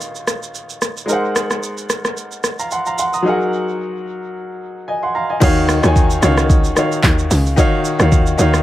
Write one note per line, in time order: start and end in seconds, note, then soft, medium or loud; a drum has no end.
0.00 1.03 D#3 medium
0.00 1.04 D#4 medium
0.00 1.05 F#4 medium
0.00 1.06 C#5 medium
0.00 1.07 F5 medium
0.00 shaker medium
0.15 shaker soft
0.27 cross-stick medium
0.27 shaker medium
0.43 shaker medium
0.55 shaker medium
0.70 shaker soft
0.82 cross-stick medium
0.82 shaker loud
0.97 shaker medium
1.06 3.20 G#3 medium
1.06 3.20 D#4 medium
1.06 3.21 A#4 medium
1.06 shaker medium
1.11 3.22 C5 medium
1.11 2.43 F#5 medium
1.36 cross-stick loud
1.36 shaker medium
1.51 cross-stick medium
1.51 shaker medium
1.63 shaker medium
1.77 shaker medium
1.90 cross-stick medium
1.90 shaker loud
2.05 cross-stick medium
2.05 shaker medium
2.17 shaker medium
2.32 shaker soft
2.44 cross-stick medium
2.44 shaker medium
2.59 2.71 F5 medium
2.59 2.71 A#5 medium
2.59 shaker medium
2.71 2.86 F#5 medium
2.71 2.86 C6 medium
2.71 shaker medium
2.86 2.98 F5 medium
2.86 2.98 A#5 medium
2.86 shaker soft
2.98 3.13 F#5 medium
2.98 3.13 C6 medium
2.98 shaker loud
3.14 3.39 A#5 medium
3.14 3.39 D#6 medium
3.14 shaker medium
3.22 5.36 F#3 medium
3.22 5.37 D#4 medium
3.22 5.38 G#4 medium
3.27 5.39 A#4 medium
3.27 4.86 F#5 medium
4.88 5.02 D#5 medium
4.88 5.02 G#5 medium
5.03 5.14 F#5 medium
5.03 5.14 C6 medium
5.15 5.29 F5 medium
5.15 5.29 A#5 medium
5.30 5.56 D#5 medium
5.30 5.55 G#5 medium
5.40 5.80 D#2 loud
5.40 5.74 D#3 loud
5.40 5.74 D#4 loud
5.40 5.75 F#4 loud
5.40 5.75 C#5 loud
5.40 5.76 F5 loud
5.40 kick loud
5.40 crash loud
5.40 shaker medium
5.69 cross-stick loud
5.69 shaker loud
5.82 6.20 D#2 loud
5.82 6.15 D#3 medium
5.82 6.15 D#4 medium
5.82 6.15 F#4 medium
5.82 6.16 C#5 medium
5.82 6.16 G#5 loud
5.82 cross-stick loud
5.82 shaker medium
5.96 kick medium
5.96 shaker medium
6.10 shaker medium
6.21 6.73 C#2 medium
6.21 6.66 D#3 medium
6.21 6.67 D#4 medium
6.21 6.67 F#4 medium
6.21 6.68 C#5 medium
6.21 6.68 F5 loud
6.21 cross-stick loud
6.21 shaker loud
6.38 cross-stick loud
6.38 shaker medium
6.50 kick loud
6.50 shaker medium
6.64 shaker soft
6.75 7.42 D#3 medium
6.75 7.42 D#4 medium
6.75 7.43 F#4 medium
6.75 7.43 C#5 medium
6.75 7.44 F5 medium
6.75 cross-stick loud
6.75 shaker medium
6.92 shaker medium
7.03 7.28 D#2 loud
7.03 kick medium
7.03 clap medium
7.03 shaker medium
7.19 shaker medium
7.31 7.56 C#2 loud
7.31 open hi-hat medium
7.31 shaker loud
7.46 shaker medium
7.56 7.90 D#3 loud
7.56 7.90 D#4 loud
7.56 7.91 F#4 loud
7.56 7.91 C#5 loud
7.56 7.92 F5 loud
7.56 kick loud
7.56 shaker medium
7.85 shaker loud
7.98 8.36 D#2 loud
7.98 8.31 D#3 medium
7.98 8.31 D#4 medium
7.98 8.32 F#4 medium
7.98 8.32 C#5 medium
7.98 8.33 F5 loud
7.98 cross-stick loud
7.98 shaker medium
8.12 kick medium
8.12 shaker medium
8.26 shaker medium
8.37 8.63 D#2 medium
8.37 8.63 D#3 loud
8.37 8.63 D#4 medium
8.37 8.63 F#4 medium
8.37 8.63 C#5 medium
8.37 8.63 F5 loud
8.37 shaker loud
8.54 cross-stick medium
8.54 shaker medium